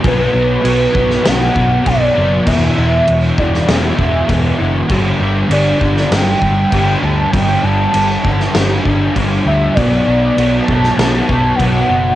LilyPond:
<<
  \new Staff \with { instrumentName = "Soft synth lead" } { \time 4/4 \key g \major \tempo 4 = 98 b'2 fis''4 d''4 | e''4. d''8 e''4. r8 | r4 d''4 g''4. a''8 | g''8 a''4. r4. e''8 |
d''4. a''4. fis''4 | }
  \new Staff \with { instrumentName = "Distorted electric guitar" } { \clef bass \time 4/4 \key g \major <b, fis b>8 <fis b>8 <b, fis b>8 <fis b>8 <b, fis b>8 <fis b>8 <b, fis b>8 <fis b>8 | <e, b, e>8 <b, e>8 <e, b, e>8 <b, e>8 <e, b, e>8 <b, e>8 <e, b, e>8 <b, e>8 | <g, d g>8 <d g>8 <g, d g>8 <d g>8 <g, d g>8 <d g>8 <g, d g>8 <d g>8 | <g, d g>8 <d g>8 <g, d g>8 <d g>8 <g, d g>8 <d g>8 <g, d g>8 <d g>8 |
<b, fis b>8 <fis b>8 <b, fis b>8 <fis b>8 <b, fis b>8 <fis b>8 <b, fis b>8 <fis b>8 | }
  \new Staff \with { instrumentName = "Fingered electric bass" } { \clef bass \time 4/4 \key g \major b,,8 b,,8 b,,8 b,,8 b,,8 b,,8 b,,8 fis,,8 | e,,8 e,,8 e,,8 e,,8 e,,8 e,,8 e,,8 fis,,8 | g,,8 g,,8 g,,8 g,,8 g,,8 g,,8 g,,8 d,8 | g,,8 g,,8 g,,8 g,,8 g,,8 g,,8 g,,8 d,8 |
b,,8 b,,8 b,,8 b,,8 b,,8 b,,8 b,,8 fis,,8 | }
  \new DrumStaff \with { instrumentName = "Drums" } \drummode { \time 4/4 <cymc bd>4 cymc8 bd16 sn16 <cymc sn>8 bd8 <cymc bd>4 | <cymc bd>4 cymc8 bd16 sn16 <cymc sn>8 bd8 <cymc bd>4 | <cymc bd>4 cymc8 bd16 sn16 <cymc sn>8 bd8 <cymc bd>4 | <cymc bd>4 cymc8 bd16 sn16 <cymc sn>8 bd8 <cymc bd>4 |
<cymc bd>4 cymc8 bd16 sn16 <cymc sn>8 bd8 <cymc bd>4 | }
>>